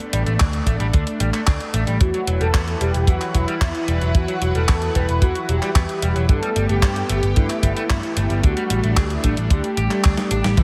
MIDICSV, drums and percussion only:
0, 0, Header, 1, 2, 480
1, 0, Start_track
1, 0, Tempo, 535714
1, 1798, Time_signature, 4, 2, 24, 8
1, 9527, End_track
2, 0, Start_track
2, 0, Title_t, "Drums"
2, 0, Note_on_c, 9, 42, 36
2, 87, Note_off_c, 9, 42, 0
2, 117, Note_on_c, 9, 42, 93
2, 207, Note_off_c, 9, 42, 0
2, 237, Note_on_c, 9, 42, 36
2, 327, Note_off_c, 9, 42, 0
2, 357, Note_on_c, 9, 39, 120
2, 357, Note_on_c, 9, 42, 61
2, 366, Note_on_c, 9, 36, 118
2, 447, Note_off_c, 9, 39, 0
2, 447, Note_off_c, 9, 42, 0
2, 455, Note_off_c, 9, 36, 0
2, 477, Note_on_c, 9, 42, 38
2, 567, Note_off_c, 9, 42, 0
2, 595, Note_on_c, 9, 36, 67
2, 597, Note_on_c, 9, 42, 80
2, 684, Note_off_c, 9, 36, 0
2, 687, Note_off_c, 9, 42, 0
2, 718, Note_on_c, 9, 42, 38
2, 807, Note_off_c, 9, 42, 0
2, 838, Note_on_c, 9, 42, 63
2, 842, Note_on_c, 9, 36, 108
2, 927, Note_off_c, 9, 42, 0
2, 932, Note_off_c, 9, 36, 0
2, 958, Note_on_c, 9, 42, 38
2, 1047, Note_off_c, 9, 42, 0
2, 1077, Note_on_c, 9, 42, 86
2, 1167, Note_off_c, 9, 42, 0
2, 1198, Note_on_c, 9, 39, 37
2, 1198, Note_on_c, 9, 42, 38
2, 1287, Note_off_c, 9, 39, 0
2, 1287, Note_off_c, 9, 42, 0
2, 1318, Note_on_c, 9, 39, 126
2, 1318, Note_on_c, 9, 42, 64
2, 1321, Note_on_c, 9, 36, 118
2, 1407, Note_off_c, 9, 39, 0
2, 1407, Note_off_c, 9, 42, 0
2, 1411, Note_off_c, 9, 36, 0
2, 1438, Note_on_c, 9, 42, 37
2, 1527, Note_off_c, 9, 42, 0
2, 1557, Note_on_c, 9, 42, 88
2, 1647, Note_off_c, 9, 42, 0
2, 1677, Note_on_c, 9, 42, 37
2, 1767, Note_off_c, 9, 42, 0
2, 1797, Note_on_c, 9, 42, 64
2, 1799, Note_on_c, 9, 36, 117
2, 1887, Note_off_c, 9, 42, 0
2, 1888, Note_off_c, 9, 36, 0
2, 1918, Note_on_c, 9, 42, 34
2, 2007, Note_off_c, 9, 42, 0
2, 2038, Note_on_c, 9, 42, 88
2, 2127, Note_off_c, 9, 42, 0
2, 2158, Note_on_c, 9, 42, 36
2, 2248, Note_off_c, 9, 42, 0
2, 2277, Note_on_c, 9, 36, 107
2, 2277, Note_on_c, 9, 39, 118
2, 2277, Note_on_c, 9, 42, 61
2, 2367, Note_off_c, 9, 36, 0
2, 2367, Note_off_c, 9, 39, 0
2, 2367, Note_off_c, 9, 42, 0
2, 2398, Note_on_c, 9, 42, 37
2, 2488, Note_off_c, 9, 42, 0
2, 2517, Note_on_c, 9, 42, 79
2, 2607, Note_off_c, 9, 42, 0
2, 2638, Note_on_c, 9, 42, 39
2, 2728, Note_off_c, 9, 42, 0
2, 2754, Note_on_c, 9, 36, 103
2, 2758, Note_on_c, 9, 42, 61
2, 2844, Note_off_c, 9, 36, 0
2, 2848, Note_off_c, 9, 42, 0
2, 2878, Note_on_c, 9, 39, 37
2, 2878, Note_on_c, 9, 42, 38
2, 2968, Note_off_c, 9, 39, 0
2, 2968, Note_off_c, 9, 42, 0
2, 2998, Note_on_c, 9, 36, 60
2, 2998, Note_on_c, 9, 42, 83
2, 3087, Note_off_c, 9, 42, 0
2, 3088, Note_off_c, 9, 36, 0
2, 3118, Note_on_c, 9, 42, 36
2, 3208, Note_off_c, 9, 42, 0
2, 3236, Note_on_c, 9, 36, 123
2, 3238, Note_on_c, 9, 39, 122
2, 3238, Note_on_c, 9, 42, 60
2, 3325, Note_off_c, 9, 36, 0
2, 3327, Note_off_c, 9, 39, 0
2, 3327, Note_off_c, 9, 42, 0
2, 3357, Note_on_c, 9, 42, 36
2, 3447, Note_off_c, 9, 42, 0
2, 3477, Note_on_c, 9, 42, 88
2, 3567, Note_off_c, 9, 42, 0
2, 3597, Note_on_c, 9, 42, 34
2, 3687, Note_off_c, 9, 42, 0
2, 3716, Note_on_c, 9, 36, 116
2, 3718, Note_on_c, 9, 42, 60
2, 3805, Note_off_c, 9, 36, 0
2, 3808, Note_off_c, 9, 42, 0
2, 3838, Note_on_c, 9, 42, 36
2, 3928, Note_off_c, 9, 42, 0
2, 3957, Note_on_c, 9, 42, 88
2, 4047, Note_off_c, 9, 42, 0
2, 4077, Note_on_c, 9, 42, 37
2, 4167, Note_off_c, 9, 42, 0
2, 4197, Note_on_c, 9, 39, 117
2, 4197, Note_on_c, 9, 42, 61
2, 4201, Note_on_c, 9, 36, 106
2, 4287, Note_off_c, 9, 39, 0
2, 4287, Note_off_c, 9, 42, 0
2, 4291, Note_off_c, 9, 36, 0
2, 4317, Note_on_c, 9, 42, 38
2, 4407, Note_off_c, 9, 42, 0
2, 4437, Note_on_c, 9, 42, 82
2, 4440, Note_on_c, 9, 36, 55
2, 4527, Note_off_c, 9, 42, 0
2, 4530, Note_off_c, 9, 36, 0
2, 4558, Note_on_c, 9, 42, 39
2, 4648, Note_off_c, 9, 42, 0
2, 4676, Note_on_c, 9, 36, 97
2, 4678, Note_on_c, 9, 42, 63
2, 4765, Note_off_c, 9, 36, 0
2, 4767, Note_off_c, 9, 42, 0
2, 4798, Note_on_c, 9, 42, 38
2, 4887, Note_off_c, 9, 42, 0
2, 4918, Note_on_c, 9, 42, 80
2, 5007, Note_off_c, 9, 42, 0
2, 5038, Note_on_c, 9, 39, 34
2, 5038, Note_on_c, 9, 42, 35
2, 5128, Note_off_c, 9, 39, 0
2, 5128, Note_off_c, 9, 42, 0
2, 5155, Note_on_c, 9, 36, 116
2, 5158, Note_on_c, 9, 39, 114
2, 5158, Note_on_c, 9, 42, 64
2, 5245, Note_off_c, 9, 36, 0
2, 5247, Note_off_c, 9, 39, 0
2, 5247, Note_off_c, 9, 42, 0
2, 5278, Note_on_c, 9, 42, 37
2, 5368, Note_off_c, 9, 42, 0
2, 5398, Note_on_c, 9, 42, 86
2, 5487, Note_off_c, 9, 42, 0
2, 5518, Note_on_c, 9, 42, 35
2, 5608, Note_off_c, 9, 42, 0
2, 5636, Note_on_c, 9, 36, 112
2, 5638, Note_on_c, 9, 42, 62
2, 5726, Note_off_c, 9, 36, 0
2, 5727, Note_off_c, 9, 42, 0
2, 5758, Note_on_c, 9, 42, 36
2, 5848, Note_off_c, 9, 42, 0
2, 5878, Note_on_c, 9, 42, 93
2, 5968, Note_off_c, 9, 42, 0
2, 5998, Note_on_c, 9, 42, 37
2, 6087, Note_off_c, 9, 42, 0
2, 6112, Note_on_c, 9, 36, 113
2, 6117, Note_on_c, 9, 39, 112
2, 6117, Note_on_c, 9, 42, 63
2, 6202, Note_off_c, 9, 36, 0
2, 6207, Note_off_c, 9, 39, 0
2, 6207, Note_off_c, 9, 42, 0
2, 6237, Note_on_c, 9, 42, 38
2, 6327, Note_off_c, 9, 42, 0
2, 6357, Note_on_c, 9, 42, 86
2, 6446, Note_off_c, 9, 42, 0
2, 6477, Note_on_c, 9, 42, 38
2, 6567, Note_off_c, 9, 42, 0
2, 6597, Note_on_c, 9, 42, 63
2, 6602, Note_on_c, 9, 36, 96
2, 6686, Note_off_c, 9, 42, 0
2, 6692, Note_off_c, 9, 36, 0
2, 6717, Note_on_c, 9, 39, 35
2, 6717, Note_on_c, 9, 42, 38
2, 6807, Note_off_c, 9, 39, 0
2, 6807, Note_off_c, 9, 42, 0
2, 6836, Note_on_c, 9, 36, 60
2, 6838, Note_on_c, 9, 42, 87
2, 6925, Note_off_c, 9, 36, 0
2, 6927, Note_off_c, 9, 42, 0
2, 6958, Note_on_c, 9, 42, 36
2, 7047, Note_off_c, 9, 42, 0
2, 7078, Note_on_c, 9, 39, 109
2, 7078, Note_on_c, 9, 42, 67
2, 7079, Note_on_c, 9, 36, 98
2, 7167, Note_off_c, 9, 39, 0
2, 7167, Note_off_c, 9, 42, 0
2, 7169, Note_off_c, 9, 36, 0
2, 7198, Note_on_c, 9, 42, 35
2, 7287, Note_off_c, 9, 42, 0
2, 7318, Note_on_c, 9, 42, 88
2, 7407, Note_off_c, 9, 42, 0
2, 7438, Note_on_c, 9, 42, 36
2, 7527, Note_off_c, 9, 42, 0
2, 7558, Note_on_c, 9, 42, 65
2, 7562, Note_on_c, 9, 36, 104
2, 7647, Note_off_c, 9, 42, 0
2, 7651, Note_off_c, 9, 36, 0
2, 7677, Note_on_c, 9, 42, 39
2, 7767, Note_off_c, 9, 42, 0
2, 7797, Note_on_c, 9, 42, 98
2, 7887, Note_off_c, 9, 42, 0
2, 7917, Note_on_c, 9, 42, 38
2, 8007, Note_off_c, 9, 42, 0
2, 8036, Note_on_c, 9, 36, 105
2, 8037, Note_on_c, 9, 39, 113
2, 8037, Note_on_c, 9, 42, 70
2, 8126, Note_off_c, 9, 36, 0
2, 8126, Note_off_c, 9, 39, 0
2, 8126, Note_off_c, 9, 42, 0
2, 8157, Note_on_c, 9, 42, 42
2, 8247, Note_off_c, 9, 42, 0
2, 8277, Note_on_c, 9, 42, 85
2, 8280, Note_on_c, 9, 36, 58
2, 8366, Note_off_c, 9, 42, 0
2, 8369, Note_off_c, 9, 36, 0
2, 8397, Note_on_c, 9, 42, 41
2, 8487, Note_off_c, 9, 42, 0
2, 8516, Note_on_c, 9, 36, 113
2, 8517, Note_on_c, 9, 42, 67
2, 8606, Note_off_c, 9, 36, 0
2, 8607, Note_off_c, 9, 42, 0
2, 8637, Note_on_c, 9, 42, 40
2, 8727, Note_off_c, 9, 42, 0
2, 8757, Note_on_c, 9, 42, 84
2, 8846, Note_off_c, 9, 42, 0
2, 8877, Note_on_c, 9, 39, 35
2, 8877, Note_on_c, 9, 42, 38
2, 8967, Note_off_c, 9, 39, 0
2, 8967, Note_off_c, 9, 42, 0
2, 8997, Note_on_c, 9, 39, 115
2, 8997, Note_on_c, 9, 42, 67
2, 9008, Note_on_c, 9, 36, 119
2, 9086, Note_off_c, 9, 39, 0
2, 9086, Note_off_c, 9, 42, 0
2, 9097, Note_off_c, 9, 36, 0
2, 9117, Note_on_c, 9, 38, 72
2, 9117, Note_on_c, 9, 42, 40
2, 9206, Note_off_c, 9, 38, 0
2, 9206, Note_off_c, 9, 42, 0
2, 9237, Note_on_c, 9, 42, 91
2, 9326, Note_off_c, 9, 42, 0
2, 9357, Note_on_c, 9, 38, 92
2, 9357, Note_on_c, 9, 42, 38
2, 9447, Note_off_c, 9, 38, 0
2, 9447, Note_off_c, 9, 42, 0
2, 9474, Note_on_c, 9, 36, 108
2, 9478, Note_on_c, 9, 42, 68
2, 9478, Note_on_c, 9, 47, 47
2, 9527, Note_off_c, 9, 36, 0
2, 9527, Note_off_c, 9, 42, 0
2, 9527, Note_off_c, 9, 47, 0
2, 9527, End_track
0, 0, End_of_file